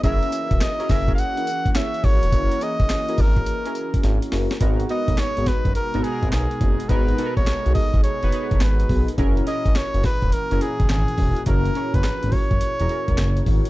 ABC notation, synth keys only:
X:1
M:4/4
L:1/16
Q:"Swing 16ths" 1/4=105
K:G#m
V:1 name="Synth keys"
[CEGA]4 z [CEGA] [CEGA] [CEGA]4 z [CEGc]4- | [CEGc] z [CEGA]3 [CEGA]4 [CEGA]6 z | [B,DFA]2 [B,DFA]6 z [B,DFA] [B,DFGA]4- [B,DFGA] z | [B,DFA]2 [B,DF=A^A]6 z [B,DFB] [B,DFB]4- [B,DFB] z |
[CEGA]2 [CEGA]6 z [CEGA] [CEGA]4- [CEGA] z | [CEGA]2 [CEGc]6 z [CEGA] [CEGA]4- [CEGA] z |]